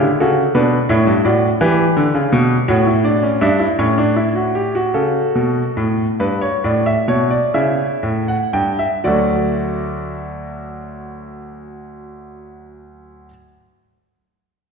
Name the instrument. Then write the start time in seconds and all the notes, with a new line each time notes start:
grand piano
0.03 D3
0.20 C#3 F#4 A4
0.55 B2 D4 B4
0.89 A2 E4 C#5
1.07 G2
1.25 A2 F#4 D5
1.61 E3 G4 B4
1.97 D3
2.15 C#3
2.32 B2
2.68 A2 F#4 C#5
2.87 E4
3.04 D4 D5
3.23 C#4
3.41 G2 D4 E5
3.60 E4
3.79 A2 C#4 C#5
3.98 D4
4.16 E4
4.35 F#4
4.55 G4
4.75 F#4
4.94 C#3 A4
5.35 B2
5.77 A2
6.20 G2 B4
6.41 C#5
6.64 A2 D5
6.86 E5
7.08 B2 C#5
7.30 D5
7.54 C#3 E4 E5
8.03 A2
8.28 F#5
8.53 G2 G5
8.79 E5
9.04 D2 F#3 A3 F#4 D5